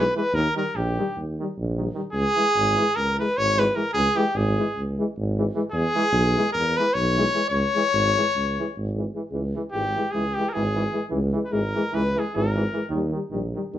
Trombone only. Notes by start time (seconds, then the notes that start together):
0.15 E3
0.56 D#3
0.97 D#3
1.39 D#3
1.77 D#3
1.94 D#3
2.36 E3
2.76 E3
3.18 E3
3.57 E3
3.75 E3
4.15 E3
4.58 E3
4.99 E3
5.38 E3
5.55 E3
5.96 E3
6.37 E3
6.79 E3
7.17 E3
7.34 E3
7.76 E3
8.17 E3
8.59 E3
8.98 E3
9.15 E3
9.33 E3
9.55 E3
9.73 E3
9.96 E3
10.14 E3
10.38 E3
10.54 E3
10.75 E3
10.92 E3
11.10 E3
11.32 E3
11.51 E3
11.74 E3
11.93 E3
12.15 E3
12.35 E3
12.55 E3
12.73 E3
12.89 D#3
13.12 D#3
13.31 D#3
13.55 D#3
13.73 D#3